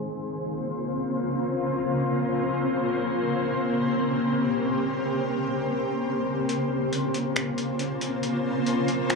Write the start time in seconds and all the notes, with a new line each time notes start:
Already playing: C#3 A#3 C4 F4 C5
3.01 G4
6.49 C#3 A#3 C4 F4 C5, closed hi-hat
6.93 closed hi-hat
7.14 closed hi-hat
7.36 finger snap, closed hi-hat
7.58 closed hi-hat
7.79 closed hi-hat
8.01 closed hi-hat
8.23 closed hi-hat
8.66 closed hi-hat
8.88 closed hi-hat
9.10 finger snap, closed hi-hat